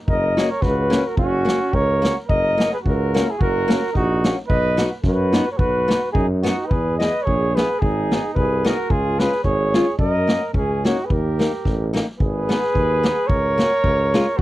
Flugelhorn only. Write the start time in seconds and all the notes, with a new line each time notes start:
0.09 D#5
0.50 C#5
0.63 B4
1.07 A#4
1.18 F#4
1.74 C#5
2.30 D#5
2.73 B4
2.87 A#4
3.30 G#4
3.42 A#4
3.96 F#4
4.49 D#5
5.04 B4
5.52 C#5
5.57 B4
6.12 G#4
6.42 F#4
6.66 B4
6.98 D#5
7.22 C#5
7.55 B4
7.79 G#4
8.34 B4
8.66 A#4
8.90 G#4
9.19 B4
9.44 C#5
9.99 D#5
10.57 G#4
10.86 F#4
11.05 B4
11.13 A#4
12.18 B4
13.27 C#5
14.37 F#4